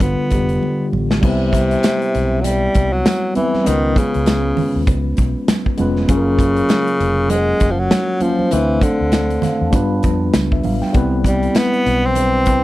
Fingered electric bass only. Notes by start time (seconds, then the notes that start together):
0.01 G1
0.20 muted fingered electric bass stroke
0.32 F1
0.93 A1
1.23 C2
2.15 B1
2.76 C2
3.67 C#2
4.15 C#2
4.59 muted fingered electric bass stroke
4.76 D#2
4.88 C#2
5.19 B1
5.80 F1
6.09 F#1
7.00 F1
7.61 F#1
8.53 D2
9.01 D2
9.44 muted fingered electric bass stroke
9.61 E2
9.73 G2
10.04 F2
10.35 C#2
10.65 A1
10.95 C2
11.86 B1
12.47 C2